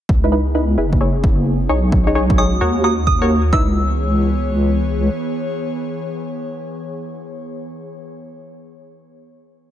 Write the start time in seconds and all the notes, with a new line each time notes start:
0.09 C#2 B3 D#4 E4 G#4, kick
0.24 D#4 E4 B4
0.32 D#4 E4 B4
0.55 D#4 E4 B4
0.78 F#1 B3 C#4 E4 G#4 B4
0.93 kick
1.01 E4 G#4 C#5
1.24 kick
1.69 B1 G#3 D#4 F#4 G#4 C#5
1.92 kick
2.07 D#4 G#4 C#5
2.15 D#4 G#4 C#5
2.30 kick
2.38 D#4 G#4 C#5 D#6
2.61 D#2 A#3 F#4 A#4 C#5
2.84 F#4 A#4 C#5 D#6
3.07 D#6, kick
3.22 F#4 A#4 C#5
3.53 C#2 E3 B3 D#4 E4 G#4 B4 C#5 E6, kick